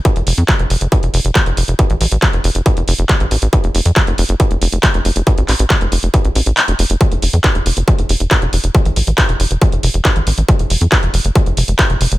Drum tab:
HH |xxoxxxoxxxoxxxox|xxoxxxoxxxoxxxox|xxoxxxoxxxoxxxox|xxoxxxoxxxoxxxox|
CP |----x-------x---|----x-------x---|----x-------x---|--x-x-------x---|
BD |o---o---o---o---|o---o---o---o---|o---o---o---o---|o---o---o-------|

HH |xxoxxxoxxxoxxxox|xxoxxxoxxxoxxxox|xxoxxxoxxxoxxxox|
CP |----x-------x---|----x-------x---|----x-------x---|
BD |o---o---o---o---|o---o---o---o---|o---o---o---o---|